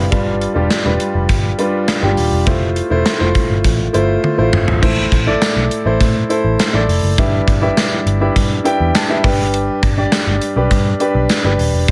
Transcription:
Already playing: grand piano G3 C4 E4 A4 B4 F5 G5 B5
0.11 picked electric bass G1, grand piano G2 G3 D4 F4 B4, kick, closed hi-hat
0.41 closed hi-hat
0.55 picked electric bass E1, grand piano G3 D4 F4 G4
0.70 snare, closed hi-hat
0.85 picked electric bass E1, grand piano G3 D4 F4 B4
1.00 closed hi-hat
1.15 picked electric bass F1
1.29 picked electric bass G1, kick, closed hi-hat
1.59 grand piano G3 D4 F4 B4, closed hi-hat
1.88 snare, closed hi-hat
2.02 picked electric bass G1, grand piano G3 D4 F4 G4
2.17 picked electric bass D#1, open hi-hat
2.32 picked electric bass E1
2.46 picked electric bass F1, grand piano A3 E4 F4 C5, kick, closed hi-hat
2.76 closed hi-hat
2.90 picked electric bass E1, grand piano A3 E4 F4 C5
3.06 snare, closed hi-hat
3.19 picked electric bass F1, grand piano A3 E4 F4 C5
3.35 kick, closed hi-hat
3.50 picked electric bass G1
3.64 picked electric bass A1, kick, closed hi-hat
3.93 picked electric bass G1, grand piano A3 E4 F4 C5, closed hi-hat
4.24 high tom
4.37 picked electric bass A1, grand piano A3 E4 F4 C5
4.53 picked electric bass G1, mid tom
4.68 picked electric bass G#1, floor tom
4.82 picked electric bass A1, grand piano A2 E4 A4 C5, kick, crash
5.12 picked electric bass A1, kick, closed hi-hat
5.27 grand piano E4 A4 D5
5.42 snare, closed hi-hat, tambourine
5.56 picked electric bass B1
5.71 closed hi-hat
5.85 picked electric bass A1, grand piano E4 A4 C5
6.01 picked electric bass A2, kick, closed hi-hat
6.29 grand piano E4 A4 C5, closed hi-hat
6.44 picked electric bass A1
6.59 snare, closed hi-hat, tambourine
6.73 picked electric bass A1, grand piano E4 A4 D5
6.88 picked electric bass F1, open hi-hat
7.03 picked electric bass F#1
7.18 picked electric bass G1, grand piano G2 D4 E4 G4 B4 E5, kick, closed hi-hat
7.48 picked electric bass G1, kick, closed hi-hat
7.61 grand piano D4 E4 G4 B4 E5
7.77 snare, closed hi-hat, tambourine
8.06 picked electric bass G1, closed hi-hat
8.20 grand piano D4 E4 G4 B4 E5
8.36 picked electric bass G2, kick, closed hi-hat
8.64 grand piano D4 E4 G4 B4 G5, closed hi-hat
8.80 picked electric bass E2
8.95 grand piano A5, snare, closed hi-hat, tambourine
9.09 grand piano D4 E4 G4 B4 E5
9.23 picked electric bass G1, grand piano G2 D4 G4 B4 G5, kick, open hi-hat
9.54 closed hi-hat
9.83 picked electric bass G1, kick, closed hi-hat
9.97 grand piano D4 G4 D5
10.12 snare, closed hi-hat, tambourine
10.27 picked electric bass G1
10.41 closed hi-hat
10.56 picked electric bass B1, grand piano D4 G4 B4
10.71 picked electric bass G2, kick, closed hi-hat
11.00 grand piano D4 G4 B4, closed hi-hat
11.15 picked electric bass B1
11.29 snare, closed hi-hat, tambourine
11.44 picked electric bass G1, grand piano D4 G4 B4
11.59 picked electric bass D#1, open hi-hat
11.73 picked electric bass E1
11.88 closed hi-hat

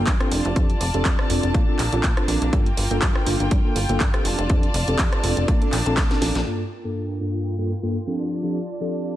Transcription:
Already playing: string section A#3 F4 G5
0.07 analog synth bass G2, kick, clap, closed hi-hat
0.20 tine electric piano C4 D4 G4 A4, cross-stick, closed hi-hat
0.31 analog synth bass F1, string section D5 A5, open hi-hat
0.45 analog synth bass F1, closed hi-hat
0.56 analog synth bass F2, tine electric piano C4 D4 G4 A4, kick, closed hi-hat
0.70 closed hi-hat
0.81 analog synth bass F1, open hi-hat
0.94 analog synth bass F1, tine electric piano C4 D4 G4 A4, closed hi-hat
1.05 analog synth bass F2, kick, clap, closed hi-hat
1.19 cross-stick
1.30 analog synth bass F1, tine electric piano C4 D4 F4 A4, open hi-hat
1.43 analog synth bass F1, closed hi-hat
1.54 analog synth bass A#2, string section A#3 D4, kick, closed hi-hat
1.67 analog synth bass A#1, tine electric piano C4 D4 F4 A4
1.79 analog synth bass A#1, clap, open hi-hat
1.92 analog synth bass A#1, tine electric piano C4 D4 F4 A4, closed hi-hat
2.03 analog synth bass A#2, kick, clap, closed hi-hat
2.17 tine electric piano C4 D4 F4 A4, cross-stick, closed hi-hat
2.28 analog synth bass A#1, open hi-hat
2.42 analog synth bass A#1, closed hi-hat
2.52 analog synth bass G2, tine electric piano A#3 D4 F4 A4, string section F4 G5, kick, closed hi-hat
2.66 closed hi-hat
2.77 analog synth bass G1, open hi-hat
2.90 analog synth bass G1, tine electric piano A#3 D4 F4 A4, closed hi-hat
3.02 analog synth bass G2, kick, clap, closed hi-hat
3.15 cross-stick
3.26 analog synth bass G1, tine electric piano A#3 D4 F4 A4, open hi-hat
3.40 analog synth bass G1, closed hi-hat
3.51 analog synth bass G2, kick, closed hi-hat
3.64 tine electric piano A#3 D4 F4 A4
3.76 analog synth bass G1, open hi-hat
3.89 analog synth bass G1, tine electric piano A#3 D4 F4 A4, closed hi-hat
4.00 analog synth bass G2, kick, clap, closed hi-hat
4.14 tine electric piano C4 D4 G4 A4, cross-stick, closed hi-hat
4.25 analog synth bass F1, string section D5 A5, open hi-hat
4.38 analog synth bass F1, closed hi-hat
4.49 analog synth bass F2, tine electric piano C4 D4 G4 A4, kick, closed hi-hat
4.63 closed hi-hat
4.74 analog synth bass F1, open hi-hat
4.88 analog synth bass F1, tine electric piano C4 D4 G4 A4, closed hi-hat
4.99 analog synth bass F2, kick, clap, closed hi-hat
5.12 cross-stick, closed hi-hat
5.23 analog synth bass F1, tine electric piano C4 D4 F4 A4, open hi-hat
5.37 analog synth bass F1, closed hi-hat
5.48 analog synth bass A#2, string section A#3 D4 A5, kick, closed hi-hat
5.61 tine electric piano C4 D4 F4 A4, closed hi-hat
5.72 analog synth bass A#1, clap, open hi-hat
5.86 analog synth bass A#1, tine electric piano C4 D4 F4 A4, closed hi-hat
5.97 analog synth bass A#2, kick, snare, clap, closed hi-hat
6.10 tine electric piano C4 D4 F4 A4, snare, closed hi-hat
6.22 analog synth bass A#1, snare, open hi-hat
6.35 analog synth bass A#1, snare, closed hi-hat
6.46 tine electric piano G2 A#3 D4 F4 A4, string section A#3 F4 G5
6.84 tine electric piano G2 A#3 D4 F4 A4
7.20 tine electric piano G2 A#3 D4 F4 A4
7.58 tine electric piano G2 A#3 D4 F4 A4
7.83 tine electric piano G2 A#3 D4 F4 A4
8.07 tine electric piano F3 C4 D4 G4 A4
8.19 string section D5 A5
8.43 tine electric piano F3 C4 D4 G4 A4
8.80 tine electric piano F3 C4 D4 G4 A4

